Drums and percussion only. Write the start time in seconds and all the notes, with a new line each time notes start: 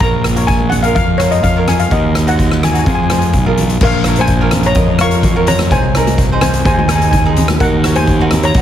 0.00 kick, closed hi-hat
0.24 cross-stick, closed hi-hat
0.36 closed hi-hat
0.48 kick, closed hi-hat
0.60 high conga
0.72 closed hi-hat, low conga
0.84 closed hi-hat
0.96 kick, closed hi-hat, low conga
1.20 cross-stick, closed hi-hat
1.32 closed hi-hat
1.44 kick, closed hi-hat
1.67 cross-stick, closed hi-hat, low conga
1.79 closed hi-hat
1.91 kick, closed hi-hat
2.15 cross-stick, closed hi-hat
2.28 closed hi-hat
2.39 kick, closed hi-hat
2.51 cross-stick, high conga
2.63 cross-stick, closed hi-hat, low conga
2.75 closed hi-hat
2.86 kick, closed hi-hat, high conga, low conga
3.10 cross-stick, closed hi-hat, high conga
3.22 closed hi-hat
3.33 kick, closed hi-hat
3.46 high conga
3.58 closed hi-hat, low conga
3.69 closed hi-hat
3.81 kick, crash
4.04 cross-stick, closed hi-hat
4.16 closed hi-hat, high conga
4.27 kick, closed hi-hat
4.51 cross-stick, closed hi-hat, high conga, low conga
4.63 closed hi-hat
4.75 kick, closed hi-hat
4.99 cross-stick, closed hi-hat
5.11 closed hi-hat
5.23 kick, closed hi-hat, low conga
5.47 closed hi-hat, low conga
5.59 cross-stick, closed hi-hat, high conga
5.71 kick, closed hi-hat
5.95 cross-stick, closed hi-hat
6.07 closed hi-hat, high conga
6.18 kick, closed hi-hat
6.41 cross-stick, closed hi-hat, high conga, low conga
6.53 closed hi-hat
6.65 kick, closed hi-hat
6.79 high conga
6.89 cross-stick, closed hi-hat
7.02 closed hi-hat
7.13 kick, closed hi-hat, low conga
7.36 closed hi-hat, low conga
7.48 cross-stick, closed hi-hat, high conga
7.60 kick, closed hi-hat
7.84 cross-stick, closed hi-hat
7.95 closed hi-hat, high conga
8.07 kick, closed hi-hat
8.31 cross-stick, closed hi-hat, high conga, low conga
8.43 closed hi-hat
8.54 kick, closed hi-hat